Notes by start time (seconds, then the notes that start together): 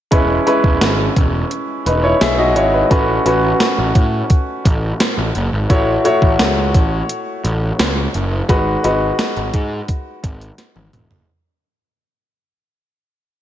0.11 E1 G#3 C#4 E4 B4, kick, closed hi-hat
0.46 G#3 C#4 E4 B4, closed hi-hat
0.64 E1, kick
0.81 G#1, snare, closed hi-hat
1.16 E1, kick, closed hi-hat
1.51 closed hi-hat
1.86 E1 D#4 B4, closed hi-hat
2.04 E4 C#5
2.21 B1 G#4 E5, snare, closed hi-hat
2.39 F#4 D#5
2.56 G#1 E4 C#5, closed hi-hat
2.73 D#4 B4
2.90 A1 A3 C#4 F#4 B4, kick, closed hi-hat
3.25 A1 A3 C#4 F#4 B4, closed hi-hat
3.60 snare, closed hi-hat
3.78 A1
3.95 A2, kick, closed hi-hat
4.30 kick, closed hi-hat
4.65 A1, kick, closed hi-hat
5.00 snare, closed hi-hat
5.17 A1
5.35 F#1, closed hi-hat
5.52 G#1
5.69 A1 A3 E4 F#4 C#5, kick, closed hi-hat
6.04 A3 E4 F#4 C#5, closed hi-hat
6.22 A1, kick
6.39 C#2, snare, closed hi-hat
6.74 A1, kick, closed hi-hat
7.09 closed hi-hat
7.44 A1, closed hi-hat
7.79 C#2, snare, closed hi-hat
8.14 F#1, closed hi-hat
8.49 G#1 G#3 D#4 F#4 B4, kick, closed hi-hat
8.83 G#1 G#3 D#4 F#4 B4, closed hi-hat
9.19 snare, closed hi-hat
9.37 G#1, closed hi-hat
9.54 G#2, kick, closed hi-hat
9.88 kick, closed hi-hat
10.24 G#1, kick, closed hi-hat
10.41 closed hi-hat
10.58 snare, closed hi-hat
10.76 G#1, high tom
10.93 E1, closed hi-hat, mid tom
11.10 F#1, floor tom